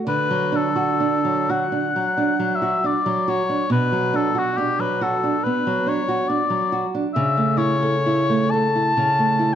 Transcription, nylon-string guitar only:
0.07 1.93 D3 medium
0.31 0.67 F#3 medium
0.52 0.91 D4 medium
0.76 1.16 F#4 soft
1.00 1.41 D4 medium
1.25 1.64 F#3 soft
1.49 1.87 F#4 medium
1.72 2.08 D4 medium
1.96 2.31 F#3 medium
2.17 2.54 D4 medium
2.39 2.76 F#3 medium
2.62 2.98 F#4 medium
2.84 3.20 D4 soft
3.06 3.42 F#3 medium
3.28 3.63 F#4 soft
3.49 3.72 D4 soft
3.70 5.40 B2 medium
3.92 4.28 F#3 medium
4.14 4.49 D4 medium
4.35 4.71 F#4 soft
4.58 4.93 D4 medium
4.79 5.14 F#3 soft
5.01 5.36 F#4 medium
5.24 5.57 D4 soft
5.46 5.79 B3 soft
5.67 6.00 F#3 medium
5.86 6.20 D4 medium
6.08 6.42 F#4 medium
6.29 6.63 D4 medium
6.50 6.84 F#3 soft
6.72 7.06 F#4 soft
6.95 7.15 D4 soft
7.16 8.93 C#3 medium
7.37 7.72 A3 soft
7.57 7.94 E4 medium
7.83 8.20 A4 soft
8.06 8.43 E4 soft
8.30 8.66 A3 soft
8.54 8.88 A4 soft
8.75 9.09 E4 medium
8.97 9.55 C#3 medium
9.19 9.51 A3 soft
9.39 9.55 E4 medium

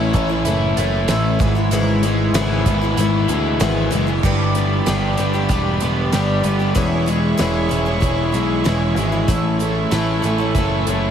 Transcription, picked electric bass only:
0.00 0.11 A1 medium
0.14 0.42 A1 medium
0.45 0.73 F#1 medium
0.77 1.05 F#1 medium
1.08 1.36 A1 loud
1.40 1.68 G#1 medium
1.71 2.28 G#1 medium
2.33 2.62 G#1 loud
2.66 2.94 G#1 medium
2.97 3.25 G#1 medium
3.29 3.57 D2 medium
3.60 3.89 G#1 medium
3.93 4.21 F#1 medium
4.23 4.80 G1 medium
4.87 5.15 G1 medium
5.19 5.47 G1 medium
5.49 5.78 E1 medium
5.82 6.10 E1 medium
6.13 6.41 G1 medium
6.44 6.73 G1 medium
6.76 7.32 E1 medium
7.40 7.68 E1 medium
7.71 7.99 E1 medium
8.02 8.30 E1 medium
8.33 8.62 B1 medium
8.65 8.93 E1 medium
8.96 9.25 G#1 medium
9.28 9.85 A1 medium
9.92 10.20 A1 medium
10.24 10.52 A1 medium
10.55 10.83 F#1 medium
10.87 11.11 F#1 medium

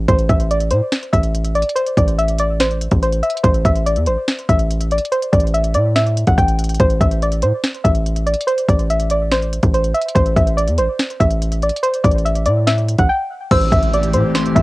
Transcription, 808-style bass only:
0.08 0.29 A1 loud
0.29 0.73 A1 loud
0.71 0.81 A2 loud
1.13 1.64 A1 loud
1.97 2.88 A1 loud
2.92 3.22 A1 loud
3.44 3.64 A1 loud
3.65 3.98 A1 loud
3.97 4.09 E2 medium
4.07 4.17 A1 medium
4.49 4.99 A1 loud
5.33 5.76 A1 loud
5.75 6.25 A2 loud
6.27 6.37 A1 loud
6.38 6.78 A1 loud
6.80 7.00 A1 loud
7.01 7.44 A1 loud
7.43 7.53 A2 loud
7.85 8.35 A1 loud
8.69 9.59 A1 loud
9.63 9.93 A1 loud
10.15 10.36 A1 loud
10.36 10.69 A1 loud
10.68 10.80 E2 loud
10.79 10.88 A1 loud
11.20 11.71 A1 loud
12.04 12.48 A1 loud
12.46 12.96 A2 loud
12.99 13.09 A1 loud
13.51 13.71 A1 loud
13.72 14.16 A1 loud
14.14 14.24 A2 loud
14.56 14.62 A1 loud

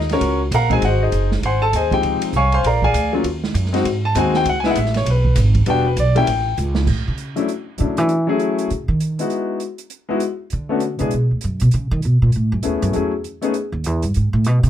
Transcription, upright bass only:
0.00 0.20 D#2 medium
0.21 0.51 C#2 medium
0.51 0.81 A#1 loud
0.82 1.11 G#1 medium
1.12 1.42 F#1 medium
1.42 1.72 G#1 medium
1.73 2.02 D#2 medium
2.03 2.20 C#2 medium
2.22 muted upright bass stroke soft
2.33 2.63 C2 medium
2.63 2.93 A#1 medium
2.94 3.23 D2 medium
3.24 3.54 D#2 medium
3.54 3.84 F#2 loud
3.85 4.14 G#2 medium
4.15 4.44 D#2 loud
4.45 4.75 C#2 medium
4.75 5.05 A1 loud
5.05 5.35 B1 medium
5.36 5.66 G#1 loud
5.97 6.26 B1 loud
6.26 6.56 A1 medium
6.58 6.87 C#2 loud
6.89 7.07 A2 medium
7.08 7.35 C#3 medium
7.80 7.98 C#3 medium
7.98 8.28 E3 loud
8.71 8.88 C#3 medium
8.88 9.16 D#3 medium
10.53 10.98 D3 medium
11.00 11.12 C#3 medium
11.14 11.30 B2 medium
11.31 11.42 D2 soft
11.44 11.61 F#2 medium
11.61 11.72 B2 medium
11.74 11.91 C#3 medium
11.91 12.02 D#3 loud
12.05 12.21 B2 medium
12.22 12.33 A#2 medium
12.36 12.51 A2 medium
12.52 12.63 F#2 medium
12.65 12.82 D#2 medium
12.82 12.93 F#2 loud
12.96 13.23 E2 medium
13.72 13.86 D#2 medium
13.86 14.03 E2 medium
14.03 14.14 G2 medium
14.16 14.33 G#2 medium
14.33 14.46 A2 loud
14.46 14.63 B2 medium
14.63 14.70 C3 loud

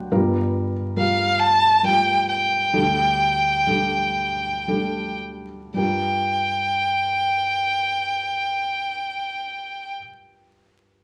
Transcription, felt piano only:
0.00 0.13 F#3 medium
0.00 0.13 D4 medium
0.00 0.13 F#4 medium
0.00 0.12 C5 medium
0.00 0.13 D5 medium
0.00 0.13 F#5 medium
0.00 0.13 G5 soft
0.11 2.70 G1 medium
0.11 2.69 G2 medium
0.11 0.70 G3 medium
0.11 0.71 F4 medium
0.11 0.71 A#4 medium
0.96 1.57 G3 soft
0.96 1.57 F4 soft
0.96 1.57 A#4 medium
1.83 2.46 G3 medium
1.83 2.46 F4 medium
1.83 2.46 A#4 medium
2.73 5.74 D2 soft
2.73 5.74 D3 soft
2.73 3.39 G3 medium
2.73 3.39 D4 medium
2.73 3.39 A4 medium
3.67 4.37 G3 medium
3.67 4.37 D4 soft
3.67 4.38 A4 medium
4.68 5.43 G3 medium
4.68 5.44 D4 soft
4.68 5.44 A4 medium
5.74 9.96 G2 medium
5.74 9.94 G3 medium
5.74 9.96 F4 soft
5.78 9.98 A#4 medium

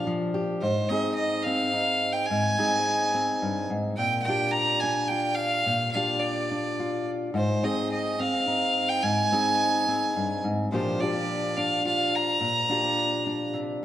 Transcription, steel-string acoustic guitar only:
0.00 0.59 A#2 medium
0.00 0.59 D4 medium
0.00 0.60 F4 medium
0.00 0.33 G4 medium
0.07 0.62 F3 medium
0.34 0.62 G4 medium
0.62 2.26 G#2 medium
0.90 1.46 C4 medium
0.90 1.73 D#4 medium
0.90 2.27 G#4 medium
1.46 2.27 C4 soft
1.74 2.26 D#4 medium
2.30 3.42 G#2 medium
2.58 3.13 C4 medium
2.58 3.95 D#4 medium
2.58 3.95 G#4 medium
3.14 3.95 C4 medium
3.42 3.69 G2 medium
3.70 3.98 G#2 medium
3.98 5.63 A#2 medium
4.28 4.83 D4 medium
4.28 5.10 F4 medium
4.28 5.95 G4 medium
4.83 5.64 D4 medium
5.11 5.63 F4 medium
5.66 7.32 A#2 medium
5.95 6.50 D4 medium
5.95 6.79 F4 medium
5.95 7.36 G4 medium
6.51 7.32 D4 medium
6.80 7.32 F4 medium
7.34 9.00 G#2 medium
7.64 8.19 C4 medium
7.64 8.47 D#4 medium
7.64 9.01 G#4 medium
8.20 9.01 C4 medium
8.48 9.01 D#4 medium
9.03 10.16 G#2 medium
9.32 9.87 C4 medium
9.32 10.70 D#4 medium
9.32 10.70 G#4 medium
9.88 10.69 C4 medium
10.16 10.44 G2 medium
10.44 10.72 G#2 medium
10.72 12.38 A#2 medium
10.72 13.85 F3 medium
10.72 11.01 D4 medium
10.72 11.02 F4 medium
10.72 11.03 G4 medium
11.02 11.57 D4 medium
11.02 11.84 F4 medium
11.02 12.70 G4 medium
11.58 12.38 D4 medium
11.85 12.38 F4 medium
12.41 13.82 A#2 medium
12.69 13.25 D4 medium
12.69 13.85 F4 medium
12.69 13.85 G4 medium
13.27 13.85 D4 medium
13.54 13.82 C3 medium

